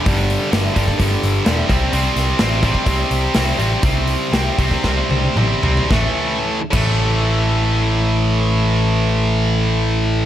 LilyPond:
<<
  \new Staff \with { instrumentName = "Distorted electric guitar" } { \clef bass \time 4/4 \key a \minor \tempo 4 = 116 <g, d g>4 <g, d g>8 <g, d g>8 <g, d g>4 <g, d g>8 <c g c'>8 | <c g c'>4 <c g c'>8 <c g c'>8 <c g c'>4 <c g c'>8 <c g c'>8 | <c g c'>4 <c g c'>8 <c g c'>8 <c g c'>4 <c g c'>8 <c g c'>8 | <a, e a>8 r4 <a, e a>2~ <a, e a>8~ |
<a, e a>1 | }
  \new Staff \with { instrumentName = "Picked electric bass" } { \clef bass \time 4/4 \key a \minor g,,4 g,,8 g,,8 g,,8 g,,8 e,,8 c,8 | c,8 c,8 a,,4 c,8 c,8 c,8 a,,8 | c,4 c,8 c,8 c,8 c,8 a,,8 c,8 | a,,8 r4 a,,2~ a,,8~ |
a,,1 | }
  \new DrumStaff \with { instrumentName = "Drums" } \drummode { \time 4/4 <hho bd>8 hho8 <hho sn>8 <hho bd>16 <bd sn>16 <hho bd>8 hho8 <hho sn>8 <hho bd>8 | hho8 <hho sn>8 <hho sn>8 <hho bd>16 bd16 <hho bd>8 hho8 <hho sn>8 hho8 | <hho bd>8 hho8 <hho sn>8 <hho bd>16 <bd sn>16 <bd sn>8 tommh16 tommh16 toml8 tomfh16 tomfh16 | <bd sn>4 r8 <cymc bd>8 r4 r4 |
r4 r4 r4 r4 | }
>>